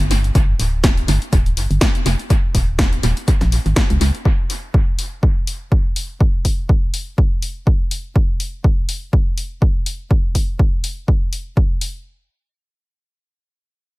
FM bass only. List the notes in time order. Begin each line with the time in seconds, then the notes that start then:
0.00 G1
0.35 G1
0.59 D1
1.08 G1
1.33 D1
1.57 G1
1.71 G1
2.06 F1
2.55 D#1
3.03 D#1
3.41 A#1
3.66 G#1
3.90 C#2
4.01 C#2